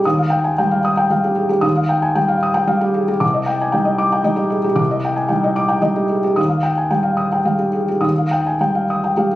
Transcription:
0.05 0.57 D#2 medium
0.05 0.26 D#6 medium
0.18 0.40 F5 soft
0.30 0.52 G5 medium
0.44 0.58 G#5 soft
0.58 1.07 G3 soft
0.58 0.80 G5 medium
0.71 0.93 F5 medium
0.85 1.06 D#6 medium
0.97 1.19 G5 medium
1.10 1.59 G3 soft
1.10 1.32 F5 medium
1.24 1.45 G4 medium
1.36 1.50 G#4 soft
1.49 1.71 G4 medium
1.61 2.14 D#2 medium
1.61 1.83 D#6 medium
1.77 1.98 F5 medium
1.89 2.10 G5 medium
2.02 2.16 G#5 medium
2.15 2.65 G3 medium
2.15 2.37 G5 medium
2.28 2.50 F5 medium
2.43 2.64 D#6 medium
2.54 2.76 G5 medium
2.67 3.17 G3 medium
2.67 2.90 F5 medium
2.81 3.03 G4 medium
2.94 3.08 G#4 medium
3.08 3.22 G4 medium
3.20 3.72 C2 medium
3.20 3.42 D6 medium
3.34 3.55 D#5 medium
3.46 3.68 G5 medium
3.61 3.74 G#5 medium
3.72 4.22 G3 medium
3.72 4.21 D#4 medium
3.72 3.94 G5 medium
3.85 4.07 D#5 medium
3.98 4.20 D6 medium
4.12 4.34 G5 medium
4.24 4.74 G3 medium
4.24 4.74 D#4 medium
4.24 4.46 D#5 medium
4.36 4.59 G4 medium
4.50 4.64 G#4 soft
4.64 4.86 G4 medium
4.75 5.28 C2 medium
4.75 4.98 D6 medium
4.91 5.12 D#5 medium
5.05 5.26 G5 medium
5.16 5.30 G#5 medium
5.29 5.79 G3 soft
5.29 5.79 D#4 soft
5.29 5.51 G5 medium
5.44 5.65 D#5 medium
5.56 5.78 D6 medium
5.69 5.91 G5 medium
5.82 6.32 G3 soft
5.82 6.33 D#4 soft
5.82 6.05 D#5 medium
5.96 6.18 G4 medium
6.09 6.24 G#4 soft
6.24 6.38 G4 medium
6.36 6.89 D#2 medium
6.36 6.58 D#6 medium
6.49 6.71 F5 soft
6.63 6.85 G5 medium
6.78 6.91 G#5 soft
6.91 7.42 G3 soft
6.91 7.13 G5 soft
7.03 7.26 F5 soft
7.17 7.40 D#6 soft
7.32 7.55 G5 soft
7.45 7.99 G3 soft
7.45 7.69 F5 soft
7.58 7.82 G4 soft
7.73 7.88 G#4 soft
7.89 8.12 G4 soft
8.00 8.57 D#2 soft
8.00 8.25 D#6 soft
8.18 8.41 F5 soft
8.31 8.55 G5 soft
8.46 8.61 G#5 soft
8.60 9.13 G3 soft
8.60 8.84 G5 soft
8.75 8.98 F5 soft
8.90 9.12 D#6 soft
9.04 9.27 G5 soft
9.17 9.35 G3 soft
9.17 9.31 G4 medium
9.17 9.35 F5 soft

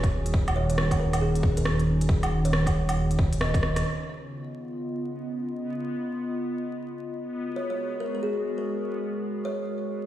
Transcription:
0.00 3.83 D#1 medium
0.00 3.84 D#3 medium
0.00 5.27 C#4 medium
0.00 0.16 F4 medium
0.00 3.84 F#4 medium
0.00 5.12 G#4 medium
0.00 kick medium
0.00 closed hi-hat soft
0.05 5.02 D#4 medium
0.26 closed hi-hat medium
0.34 kick loud
0.48 closed hi-hat soft
0.48 low woodblock medium
0.56 0.65 C#5 medium
0.69 0.75 C#5 medium
0.69 closed hi-hat medium
0.78 cross-stick loud
0.91 kick medium
0.91 closed hi-hat soft
0.91 low woodblock soft
0.99 1.08 A#4 medium
1.13 1.19 A#4 medium
1.13 closed hi-hat medium
1.13 low woodblock medium
1.21 1.45 G#4 medium
1.35 closed hi-hat soft
1.43 kick loud
1.57 1.87 A#4 medium
1.57 closed hi-hat medium
1.65 cross-stick loud
1.80 closed hi-hat soft
2.01 closed hi-hat medium
2.09 kick loud
2.23 closed hi-hat soft
2.23 low woodblock medium
2.45 2.68 C#5 medium
2.45 closed hi-hat medium
2.53 cross-stick loud
2.66 kick medium
2.66 closed hi-hat soft
2.66 low woodblock medium
2.89 closed hi-hat medium
2.89 low woodblock medium
3.11 closed hi-hat soft
3.19 kick loud
3.33 closed hi-hat medium
3.41 3.85 D#5 medium
3.41 cross-stick loud
3.54 kick loud
3.54 cross-stick soft
3.54 closed hi-hat soft
3.63 cross-stick medium
3.76 cross-stick medium
3.76 closed hi-hat medium
3.85 7.35 C#3 medium
3.85 10.06 B3 medium
4.05 8.45 B3 medium
4.05 7.35 F4 medium
4.12 8.77 D#5 medium
7.35 10.06 G#3 medium
7.40 10.06 F#4 medium
7.45 10.06 G#4 medium
7.45 10.06 A#4 medium
7.56 7.65 C#5 medium
7.70 7.76 C#5 medium
8.00 8.09 A#4 medium
8.15 8.20 A#4 medium
8.23 8.46 G#4 medium
8.58 8.88 A#4 medium
9.45 9.68 C#5 medium

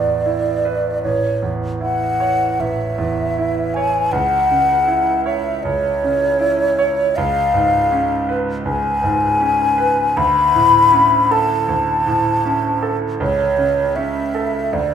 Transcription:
0.00 1.00 A1 soft
0.00 1.06 E2 soft
0.00 0.26 E4 soft
0.00 0.65 B4 soft
0.00 1.02 D5 medium
0.26 0.88 E4 soft
0.65 1.04 B4 soft
1.03 2.55 A1 soft
1.03 1.52 C#5 medium
1.42 2.04 E2 soft
1.81 2.43 E4 soft
1.81 2.62 F#5 medium
2.20 2.83 C#5 soft
2.59 4.09 A1 soft
2.59 3.76 E5 medium
2.98 3.60 E2 soft
3.38 3.98 E4 soft
3.74 4.13 C#5 soft
3.74 4.13 G#5 medium
4.12 5.61 C#2 soft
4.12 5.25 F#5 medium
4.50 5.11 C#3 soft
4.87 5.49 E4 soft
5.25 5.87 C#5 soft
5.25 5.64 E5 medium
5.63 7.13 C#2 soft
5.63 7.17 C#5 medium
6.03 6.64 C#3 soft
6.39 7.01 E4 soft
6.79 7.17 C#5 soft
7.16 8.62 C#2 soft
7.16 8.39 F5 medium
7.54 8.14 G#2 soft
7.92 8.51 C#4 soft
8.29 8.89 B4 soft
8.65 10.12 C#2 soft
8.65 10.19 G#5 medium
9.04 9.64 G#2 soft
9.40 10.01 C#4 soft
9.78 10.16 B4 soft
10.17 11.65 D2 soft
10.17 11.33 B5 medium
10.55 11.16 A2 soft
10.92 11.53 C#4 soft
11.31 11.92 A4 soft
11.31 12.98 A5 medium
11.69 13.16 D2 soft
12.07 12.68 A2 soft
12.45 13.06 C#4 soft
12.82 13.20 A4 soft
13.20 14.70 C#2 soft
13.20 13.97 C#5 medium
13.57 14.19 C#3 soft
13.96 14.58 C#4 soft
13.96 14.75 E5 medium
14.35 14.74 A4 soft
14.73 14.94 D2 soft
14.73 14.94 D5 medium

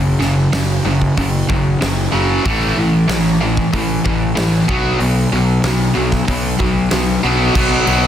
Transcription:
0.00 0.14 F#1 medium
0.00 0.18 F#2 medium
0.00 0.18 C#3 medium
0.20 0.46 F#1 medium
0.20 0.49 F#2 medium
0.20 0.50 C#3 medium
0.20 snare soft
0.53 0.78 F#1 medium
0.53 0.82 F#2 medium
0.53 0.82 C#3 medium
0.53 snare loud
0.53 open hi-hat medium
0.85 1.10 F#1 medium
0.85 1.14 F#2 medium
0.85 1.14 C#3 medium
1.02 kick medium
1.17 1.42 F#1 loud
1.17 1.46 F#2 medium
1.17 1.46 C#3 medium
1.17 kick loud
1.17 open hi-hat medium
1.49 1.74 F#1 medium
1.49 1.78 F#2 medium
1.49 1.78 C#3 medium
1.49 kick loud
1.81 2.07 F#1 medium
1.81 2.10 F#2 medium
1.81 2.10 C#3 medium
1.81 snare loud
1.81 open hi-hat medium
2.12 2.38 F#1 medium
2.12 2.43 F#2 medium
2.12 2.43 C#3 loud
2.12 2.43 F#3 loud
2.44 2.71 A1 medium
2.44 2.75 A2 loud
2.44 2.75 E3 loud
2.44 2.75 A3 loud
2.44 kick loud
2.44 open hi-hat medium
2.77 3.02 A1 medium
2.77 3.06 A2 medium
2.77 3.07 E3 medium
3.08 3.59 A1 medium
3.08 3.37 A2 medium
3.08 3.38 E3 medium
3.08 snare loud
3.08 open hi-hat medium
3.41 3.70 A2 medium
3.41 3.70 E3 medium
3.57 kick medium
3.73 3.98 A1 loud
3.73 4.02 A2 medium
3.73 4.02 E3 medium
3.73 kick loud
3.73 open hi-hat medium
4.04 4.30 A1 medium
4.04 4.33 A2 medium
4.04 4.34 E3 medium
4.04 kick medium
4.35 4.62 A1 medium
4.35 4.65 A2 medium
4.35 4.65 E3 medium
4.35 snare loud
4.35 open hi-hat medium
4.68 4.94 B1 medium
4.68 4.98 B2 medium
4.68 4.98 F#3 medium
4.68 4.99 B3 loud
4.68 kick loud
4.99 5.25 B1 medium
4.99 5.29 B2 medium
4.99 5.29 F#3 medium
4.99 open hi-hat medium
5.32 5.58 B1 medium
5.32 5.61 B2 medium
5.32 5.61 F#3 medium
5.64 5.89 B1 loud
5.64 5.93 B2 medium
5.64 5.93 F#3 medium
5.64 snare loud
5.64 open hi-hat medium
5.95 6.21 B1 medium
5.95 6.24 B2 medium
5.95 6.24 F#3 medium
6.12 kick medium
6.12 snare soft
6.28 6.53 B1 medium
6.28 6.57 B2 medium
6.28 6.57 F#3 medium
6.28 kick medium
6.28 open hi-hat medium
6.59 6.85 B1 medium
6.59 6.88 B2 medium
6.59 6.89 F#3 medium
6.59 kick medium
6.91 7.17 B1 medium
6.91 7.20 B2 medium
6.91 7.20 F#3 medium
6.91 snare loud
6.91 open hi-hat medium
7.23 7.49 B1 medium
7.23 7.53 B2 medium
7.23 7.54 F#3 medium
7.23 7.54 B3 medium
7.55 7.76 B1 medium
7.55 7.85 B2 loud
7.55 7.86 F#3 loud
7.55 7.87 B3 loud
7.55 kick loud
7.55 crash loud
7.86 8.07 B1 medium
7.86 8.07 B2 medium
7.86 8.07 F#3 medium
7.86 8.07 B3 loud
7.86 ride medium

